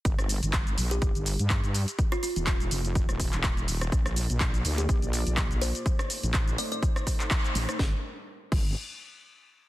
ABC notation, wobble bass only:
X:1
M:4/4
L:1/16
Q:"Swing 16ths" 1/4=124
K:Gm
V:1 name="Wobble bass" clef=bass
G,,,3 G,,,3 B,,,2 G,,, G,,,2 G,,2 G,,2 z | z3 E,,,3 F,,,3 E,,,2 E,,,3 E,,,2 | B,,,3 B,,,3 D,,2 B,,, B,,,2 B,,,2 B,,,2 z | z3 A,,,3 z8 A,,, z |
G,,, z4 z G,,,2 z8 |]